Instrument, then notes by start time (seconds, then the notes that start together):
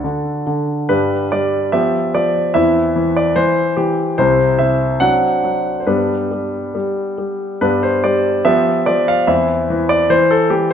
grand piano
Already playing: D4 F#4 A4
0.04 D3
0.47 D3
0.89 G2 G3 D4 G4 B4
1.32 G3 D5
1.72 F3 B3 G4 E5
2.15 F3 D5
2.54 E2 E3 C4 E4 E5
2.96 E3
3.17 D5
3.36 E3 C5
3.77 E3 G4
4.18 C2 C3 C4 E4 C5
4.59 C3 E5
5.00 F#3 C4 D4 F#5
5.44 F#3
5.80 C5
5.87 G2 G3 B3 D4 B4
6.31 G3
6.75 G3
7.18 G3
7.61 G2 G3 B3 D4 B4
7.83 C5
8.04 G3 D5
8.45 F3 B3 G4 E5
8.86 F3 D5
9.08 F5
9.27 E2 E3 C4 E4 E5
9.70 E3
9.89 D5
10.10 E3 C5
10.31 A4
10.50 E3 G4